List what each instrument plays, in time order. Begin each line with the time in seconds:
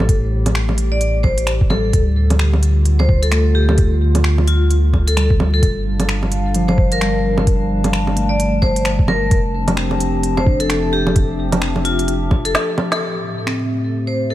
Already playing: sub bass A1, ambient pad A2 G4, tine electric piano A3, vibraphone A4
0.00 low bongo
0.09 kick, closed hi-hat
0.46 closed hi-hat, low bongo
0.55 finger snap
0.69 low bongo
0.78 closed hi-hat
0.92 vibraphone D5
1.01 closed hi-hat
1.23 vibraphone C5, kick, low bongo
1.38 closed hi-hat
1.47 finger snap, closed hi-hat
1.61 kick
1.70 tine electric piano G3, vibraphone A4, low bongo
1.93 sub bass D2, ambient pad D3, kick, closed hi-hat
2.30 closed hi-hat, low bongo
2.39 finger snap
2.53 low bongo
2.63 ambient pad F4, closed hi-hat
2.85 closed hi-hat
2.99 vibraphone C5, low bongo
3.09 kick
3.22 vibraphone A4, closed hi-hat
3.32 tine electric piano A3, finger snap, closed hi-hat
3.55 vibraphone G4
3.69 low bongo
3.78 kick, closed hi-hat
4.15 closed hi-hat, low bongo
4.24 finger snap
4.38 low bongo
4.47 vibraphone F4, closed hi-hat
4.71 closed hi-hat
4.94 kick, low bongo
5.08 vibraphone A4, closed hi-hat
5.17 tine electric piano G3, finger snap, closed hi-hat
5.30 kick
5.40 low bongo
5.54 vibraphone A4
5.63 sub bass G1, ambient pad G3, kick, closed hi-hat
5.68 ambient pad D4
5.78 ambient pad F5 A5
6.00 closed hi-hat, low bongo
6.09 finger snap
6.23 low bongo
6.32 closed hi-hat
6.54 tine electric piano F3, closed hi-hat
6.68 vibraphone C5, low bongo
6.78 kick
6.92 vibraphone A#4, closed hi-hat
7.01 tine electric piano G3, finger snap, closed hi-hat
7.38 low bongo
7.47 kick, closed hi-hat
7.84 closed hi-hat, low bongo
7.93 finger snap
8.07 low bongo
8.16 tine electric piano A3, closed hi-hat
8.29 vibraphone D5
8.40 closed hi-hat
8.62 vibraphone C5, kick, low bongo
8.76 closed hi-hat
8.85 finger snap, closed hi-hat
8.99 kick
9.08 vibraphone A#4, low bongo
9.31 sub bass F1, ambient pad F3, kick, closed hi-hat
9.41 ambient pad C4
9.50 ambient pad G4
9.68 closed hi-hat, low bongo
9.77 finger snap
9.91 low bongo
10.00 closed hi-hat
10.23 ambient pad E5, closed hi-hat
10.37 vibraphone C5, low bongo
10.46 tine electric piano D4, kick
10.60 vibraphone A4, closed hi-hat
10.70 finger snap, closed hi-hat
10.93 vibraphone G4
11.07 low bongo
11.16 kick, closed hi-hat
11.52 closed hi-hat, low bongo
11.62 finger snap
11.76 low bongo
11.85 vibraphone F4, closed hi-hat
11.99 closed hi-hat
12.08 closed hi-hat
12.31 kick, low bongo
12.45 vibraphone A4, closed hi-hat
12.55 finger snap, snare, closed hi-hat
12.78 low bongo
12.92 vibraphone A4, snare, closed hi-hat
13.01 ambient pad A2
13.25 ambient pad A3
13.47 tine electric piano C4, finger snap
13.68 ambient pad C5
14.07 vibraphone C5
14.31 vibraphone A4